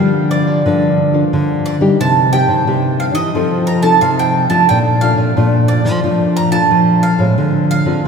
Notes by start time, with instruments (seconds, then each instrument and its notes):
Already playing: mandolin F5
0.00 nylon-string guitar D3 F3 G3 A#3 D4
0.31 mandolin D5
0.47 nylon-string guitar D3
0.66 nylon-string guitar G2 D3 F3 A#3 D4
1.14 nylon-string guitar F3 A#3 D4
1.33 nylon-string guitar D3
1.66 mandolin D5
1.81 nylon-string guitar G3 A#3 D#4 G4
2.00 nylon-string guitar C3, mandolin A5
2.33 nylon-string guitar A#3 D#4 G4, mandolin G5
2.48 nylon-string guitar C3
2.67 nylon-string guitar G2 C3 A#3 D#4 G4
3.00 mandolin F5
3.15 nylon-string guitar E3, mandolin D#5
3.35 nylon-string guitar F3 C4 D#4 A4
3.67 mandolin A#5
3.83 nylon-string guitar C4 D#4 A4, mandolin A5
4.01 nylon-string guitar C3, mandolin F5
4.19 mandolin G5
4.50 nylon-string guitar F3 A3 D4 F4, mandolin A5
4.69 nylon-string guitar A#2, mandolin G5
5.01 nylon-string guitar A3 D4 F4, mandolin F5
5.17 nylon-string guitar A#2
5.37 nylon-string guitar A#2 F3 A3 D4 F4
5.68 mandolin D5
5.85 nylon-string guitar F3
6.04 nylon-string guitar A#2 F3 A3 D4 F4
6.36 mandolin A#5
6.51 nylon-string guitar A3 D4 F4, mandolin A5
6.71 nylon-string guitar F3
7.03 mandolin F5
7.19 nylon-string guitar A2 G#3 C4 F4
7.38 nylon-string guitar D3
7.71 mandolin F5
7.86 nylon-string guitar D3 G#3 C4 F4